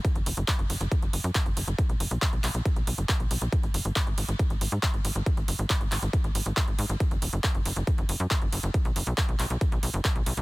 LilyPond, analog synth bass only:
\new Staff \with { instrumentName = "Analog synth bass" } { \clef bass \time 4/4 \key b \major \tempo 4 = 138 r16 fis,,16 e,,16 fis,,16 r16 fis,,16 fis,,16 fis,,16 r16 fis,,16 fis,,16 fis,16 r16 fis,,16 fis,,16 fis,,16 | r16 b,,16 fis,,16 b,,16 r16 b,,16 b,,16 b,,16 r16 b,,16 b,,16 fis,,16 r16 b,,16 b,,16 b,,16 | r16 gis,,16 fis,,16 gis,,16 r16 gis,,16 gis,,16 gis,,16 r16 gis,,16 gis,,16 gis,16 r16 gis,,16 gis,,16 gis,,16 | r16 gis,,16 fis,,16 gis,,16 r16 gis,,16 gis,,16 gis,,16 r16 gis,,16 gis,,16 gis,,16 r16 gis,,16 gis,16 gis,,16 |
r16 fis,,16 e,,16 fis,,16 r16 fis,,16 fis,,16 fis,,16 r16 fis,,16 fis,,16 fis,16 r16 fis,,16 fis,,16 fis,,16 | r16 b,,16 fis,,16 b,,16 r16 b,,16 b,,16 b,,16 r16 b,,16 b,,16 fis,,16 r16 b,,16 b,,16 b,,16 | }